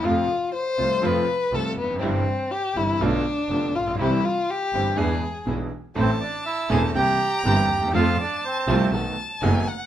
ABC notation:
X:1
M:4/4
L:1/16
Q:1/4=122
K:C
V:1 name="Bandoneon"
z16 | z16 | z16 | [Cc]2 [Dd]2 [Ee]2 [^G^g]2 [=G=g]4 [Gg]4 |
[Ff]2 [Dd]2 [Cc]4 z8 |]
V:2 name="Violin"
F4 c4 B4 A2 B,2 | C4 G2 E2 D6 F2 | E2 F2 G4 ^G4 z4 | a8 _b8 |
a8 a4 ^g2 ^f2 |]
V:3 name="String section"
[A,CF]2 z4 [A,CF]2 [A,CF]2 z2 [A,CF]2 z2 | [G,CE]2 z4 [G,CE]2 [A,B,D]2 z2 [A,B,D]2 z2 | [G,CE]2 z4 [G,CE]2 [^G,DE]2 z2 [G,DE]2 z2 | [A,CE]2 z4 [A,CE]2 [_B,CE]2 z2 [B,CE]2 z2 |
[A,CF]2 z4 [A,CF]2 [A,B,^D]2 z2 [A,B,D]2 z2 |]
V:4 name="Grand piano" clef=bass
[F,,C,F,A,F]2 z4 [C,,C,F,A,F]2 [F,,C,F,A,F]2 z2 [C,,C,F,A,F]2 z/2 E,,/2 F,,/2 ^F,,/2 | [G,,,G,,C,E,G,E]2 z4 [G,,,G,,C,E,G,E]2 [B,,,B,,D,A,B,F]2 z2 [F,,,F,,D,A,B,F]2 z/2 A,,,/2 _B,,,/2 =B,,,/2 | [C,,C,E,G,CG]2 z4 [G,,,G,,E,G,CG]2 [E,,E,B,D^G]2 z2 [B,,,B,,E,B,DG]2 z2 | [A,,,A,,E,A,CA]2 z4 [E,,,E,,E,A,CA]2 [C,,C,E,_B,CG]2 z2 [G,,,G,,E,B,CG]2 z/2 D,,/2 ^D,,/2 E,,/2 |
[F,,F,A,CA]2 z4 [C,,C,F,A,CA]2 [B,,,B,,^D,A,B,^F]2 z2 [^F,,,^F,,D,A,B,F]2 z2 |]
V:5 name="Double bass" clef=bass
F,,2 z4 C,,2 F,,2 z2 C,,2 F,,,2 | G,,,2 z4 G,,,2 B,,,2 z2 F,,,2 _B,,,2 | C,,2 z4 G,,,2 E,,2 z2 B,,,2 z2 | A,,,2 z4 E,,,2 C,,2 z2 G,,,2 ^D,,2 |
F,,2 z4 C,,2 B,,,2 z2 ^F,,,2 z2 |]